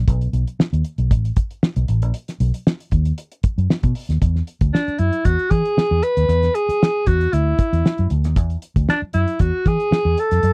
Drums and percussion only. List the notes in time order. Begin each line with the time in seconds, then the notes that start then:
0.08 kick, closed hi-hat
0.21 closed hi-hat
0.33 closed hi-hat
0.47 closed hi-hat
0.60 snare
0.73 closed hi-hat
0.84 closed hi-hat
0.98 closed hi-hat
1.11 kick, closed hi-hat
1.25 closed hi-hat
1.36 kick, closed hi-hat
1.51 closed hi-hat
1.63 snare
1.76 closed hi-hat
1.88 closed hi-hat
2.02 closed hi-hat
2.14 closed hi-hat
2.28 snare, closed hi-hat
2.40 closed hi-hat
2.54 closed hi-hat
2.67 snare
2.80 closed hi-hat
2.91 kick, closed hi-hat
3.05 closed hi-hat
3.18 closed hi-hat
3.32 closed hi-hat
3.43 kick, closed hi-hat
3.58 closed hi-hat
3.70 snare
3.83 kick, closed hi-hat
3.95 open hi-hat
4.10 snare, closed hi-hat
4.22 kick, closed hi-hat
4.36 snare
4.47 closed hi-hat
4.61 kick, closed hi-hat
4.75 snare
4.88 closed hi-hat
4.98 closed hi-hat
5.13 closed hi-hat
5.25 kick, closed hi-hat
5.39 closed hi-hat
5.51 kick, closed hi-hat
5.65 closed hi-hat
5.78 snare
6.03 closed hi-hat
6.17 closed hi-hat
6.29 closed hi-hat
6.43 snare, closed hi-hat
6.55 closed hi-hat
6.69 closed hi-hat
6.83 snare
7.06 kick, closed hi-hat
7.21 closed hi-hat
7.33 closed hi-hat
7.59 kick, closed hi-hat
7.73 closed hi-hat
7.86 snare
7.98 closed hi-hat
8.10 closed hi-hat
8.24 snare, closed hi-hat
8.36 kick, closed hi-hat
8.50 closed hi-hat
8.62 closed hi-hat
8.76 kick, closed hi-hat
8.89 snare
9.13 closed hi-hat
9.28 closed hi-hat
9.39 kick, closed hi-hat
9.66 kick, closed hi-hat
9.80 closed hi-hat
9.92 snare
10.18 closed hi-hat
10.31 snare, closed hi-hat
10.43 closed hi-hat